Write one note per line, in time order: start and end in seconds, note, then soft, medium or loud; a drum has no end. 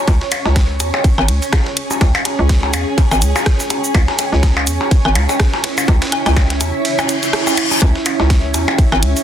0.00 9.23 C#4 medium
0.00 0.83 C#5 medium
0.07 0.19 C#2 loud
0.07 kick loud
0.07 ride medium
0.07 percussion blips soft
0.21 snare medium
0.32 closed hi-hat medium
0.32 ride medium
0.32 cabasa soft
0.32 percussion blips medium
0.46 0.82 C#2 medium
0.46 snare soft
0.46 percussion blips soft
0.56 kick loud
0.56 snare loud
0.56 ride medium
0.80 0.91 E2 medium
0.80 4.70 G#4 medium
0.80 closed hi-hat medium
0.80 ride medium
0.80 cabasa soft
0.80 percussion blips soft
0.94 percussion blips medium
1.04 kick loud
1.04 ride medium
1.18 1.30 G#1 medium
1.18 percussion blips medium
1.18 percussion blips soft
1.28 1.40 C#2 loud
1.28 closed hi-hat medium
1.28 ride medium
1.42 ride soft
1.42 cabasa soft
1.53 kick loud
1.53 cross-stick loud
1.53 snare loud
1.53 ride medium
1.53 percussion blips soft
1.53 percussion blips medium
1.53 percussion blips soft
1.66 snare medium
1.77 closed hi-hat medium
1.77 ride medium
1.91 cabasa soft
1.91 percussion blips soft
2.01 2.12 C#2 loud
2.01 kick loud
2.01 ride medium
2.01 percussion blips medium
2.15 ride soft
2.15 percussion blips medium
2.25 closed hi-hat medium
2.25 ride medium
2.25 percussion blips soft
2.39 2.75 C#2 medium
2.49 kick loud
2.49 snare loud
2.49 ride medium
2.63 percussion blips soft
2.74 2.85 E2 medium
2.74 closed hi-hat medium
2.74 ride medium
2.74 cabasa soft
2.74 percussion blips medium
2.98 kick loud
2.98 ride medium
2.98 percussion blips soft
3.11 3.23 G#1 medium
3.11 ride soft
3.11 percussion blips medium
3.11 cabasa soft
3.22 3.33 C#2 loud
3.22 closed hi-hat medium
3.22 ride medium
3.22 cabasa soft
3.36 snare soft
3.36 cabasa soft
3.36 percussion blips medium
3.36 percussion blips soft
3.46 kick loud
3.46 cross-stick loud
3.46 snare loud
3.46 ride medium
3.60 snare medium
3.60 cabasa soft
3.70 closed hi-hat medium
3.70 ride medium
3.70 percussion blips soft
3.70 cabasa soft
3.70 percussion blips soft
3.84 cabasa soft
3.94 4.06 C#2 loud
3.94 kick loud
3.94 ride medium
3.94 percussion blips medium
4.08 snare medium
4.08 percussion blips soft
4.19 closed hi-hat medium
4.19 ride medium
4.19 percussion blips medium
4.19 cabasa soft
4.32 4.69 C#2 medium
4.32 snare soft
4.43 kick loud
4.43 snare loud
4.43 ride medium
4.43 percussion blips soft
4.57 percussion blips medium
4.67 4.79 E2 loud
4.67 8.57 E4 medium
4.67 closed hi-hat medium
4.67 ride medium
4.67 cabasa soft
4.81 percussion blips soft
4.91 kick loud
4.91 ride medium
5.05 5.17 G#1 medium
5.05 percussion blips medium
5.15 5.27 C#2 loud
5.15 closed hi-hat medium
5.15 ride medium
5.15 percussion blips medium
5.15 percussion blips soft
5.29 ride soft
5.29 percussion blips medium
5.29 cabasa soft
5.40 kick loud
5.40 cross-stick loud
5.40 snare loud
5.40 ride medium
5.54 snare medium
5.54 percussion blips soft
5.64 snare loud
5.64 closed hi-hat medium
5.64 ride medium
5.78 snare soft
5.78 cabasa soft
5.78 percussion blips medium
5.88 6.00 C#2 loud
5.88 kick loud
5.88 ride medium
5.88 percussion blips soft
6.02 snare loud
6.02 ride medium
6.12 closed hi-hat medium
6.12 percussion blips medium
6.26 6.62 C#2 medium
6.26 ride medium
6.26 percussion blips medium
6.26 percussion blips soft
6.37 kick loud
6.37 snare loud
6.37 ride medium
6.37 percussion blips medium
6.50 snare soft
6.50 closed hi-hat soft
6.61 6.72 E2 medium
6.61 closed hi-hat medium
6.61 ride medium
6.61 cabasa soft
6.61 percussion blips soft
6.85 ride medium
6.85 reverse cymbal medium
6.99 ride soft
6.99 percussion blips medium
6.99 percussion blips soft
6.99 cabasa soft
6.99 percussion blips medium
6.99 percussion blips soft
7.09 closed hi-hat medium
7.09 ride medium
7.09 cabasa soft
7.23 snare soft
7.23 closed hi-hat soft
7.23 cabasa soft
7.33 cross-stick loud
7.33 snare loud
7.33 ride medium
7.33 percussion blips soft
7.47 snare medium
7.47 percussion blips medium
7.47 cabasa soft
7.57 closed hi-hat medium
7.57 ride medium
7.57 cabasa soft
7.57 percussion blips medium
7.71 cabasa soft
7.71 percussion blips soft
7.82 7.93 C#2 loud
7.82 kick loud
7.82 ride medium
7.82 percussion blips soft
7.96 snare medium
8.06 closed hi-hat medium
8.06 ride medium
8.06 cabasa soft
8.06 percussion blips medium
8.20 8.56 C#2 medium
8.20 snare soft
8.20 percussion blips soft
8.30 kick loud
8.30 snare loud
8.30 ride medium
8.54 8.66 E2 medium
8.54 9.23 G#4 medium
8.54 closed hi-hat medium
8.54 ride medium
8.54 cabasa soft
8.54 percussion blips soft
8.68 percussion blips medium
8.78 kick loud
8.78 ride medium
8.92 9.04 G#1 medium
8.92 percussion blips medium
8.92 percussion blips soft
9.03 9.14 C#2 loud
9.03 closed hi-hat medium
9.03 ride medium
9.16 ride soft
9.16 cabasa soft